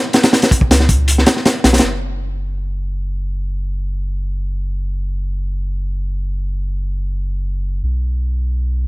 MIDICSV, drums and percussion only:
0, 0, Header, 1, 2, 480
1, 0, Start_track
1, 0, Tempo, 500000
1, 8521, End_track
2, 0, Start_track
2, 0, Title_t, "Drums"
2, 128, Note_on_c, 9, 42, 78
2, 137, Note_on_c, 9, 38, 98
2, 224, Note_off_c, 9, 42, 0
2, 224, Note_on_c, 9, 42, 78
2, 228, Note_off_c, 9, 38, 0
2, 228, Note_on_c, 9, 38, 110
2, 316, Note_off_c, 9, 38, 0
2, 316, Note_on_c, 9, 38, 110
2, 320, Note_off_c, 9, 42, 0
2, 321, Note_on_c, 9, 42, 86
2, 405, Note_off_c, 9, 42, 0
2, 405, Note_on_c, 9, 42, 79
2, 412, Note_off_c, 9, 38, 0
2, 414, Note_on_c, 9, 38, 97
2, 492, Note_on_c, 9, 36, 100
2, 496, Note_off_c, 9, 42, 0
2, 496, Note_on_c, 9, 42, 66
2, 510, Note_off_c, 9, 38, 0
2, 588, Note_off_c, 9, 36, 0
2, 588, Note_on_c, 9, 36, 107
2, 592, Note_off_c, 9, 42, 0
2, 680, Note_on_c, 9, 42, 97
2, 682, Note_on_c, 9, 38, 104
2, 684, Note_off_c, 9, 36, 0
2, 767, Note_off_c, 9, 38, 0
2, 767, Note_on_c, 9, 38, 53
2, 776, Note_off_c, 9, 42, 0
2, 854, Note_on_c, 9, 36, 97
2, 854, Note_on_c, 9, 42, 66
2, 863, Note_off_c, 9, 38, 0
2, 950, Note_off_c, 9, 36, 0
2, 950, Note_off_c, 9, 42, 0
2, 1035, Note_on_c, 9, 42, 84
2, 1131, Note_off_c, 9, 42, 0
2, 1137, Note_on_c, 9, 38, 41
2, 1214, Note_on_c, 9, 42, 66
2, 1217, Note_off_c, 9, 38, 0
2, 1217, Note_on_c, 9, 38, 109
2, 1310, Note_off_c, 9, 38, 0
2, 1310, Note_off_c, 9, 42, 0
2, 1310, Note_on_c, 9, 38, 44
2, 1397, Note_on_c, 9, 42, 86
2, 1399, Note_off_c, 9, 38, 0
2, 1399, Note_on_c, 9, 38, 105
2, 1493, Note_off_c, 9, 42, 0
2, 1495, Note_off_c, 9, 38, 0
2, 1575, Note_on_c, 9, 38, 99
2, 1577, Note_on_c, 9, 42, 83
2, 1662, Note_off_c, 9, 38, 0
2, 1662, Note_on_c, 9, 38, 83
2, 1670, Note_off_c, 9, 42, 0
2, 1670, Note_on_c, 9, 42, 65
2, 1709, Note_off_c, 9, 42, 0
2, 1709, Note_on_c, 9, 42, 69
2, 1722, Note_off_c, 9, 38, 0
2, 1722, Note_on_c, 9, 38, 93
2, 1805, Note_off_c, 9, 42, 0
2, 1818, Note_off_c, 9, 38, 0
2, 8521, End_track
0, 0, End_of_file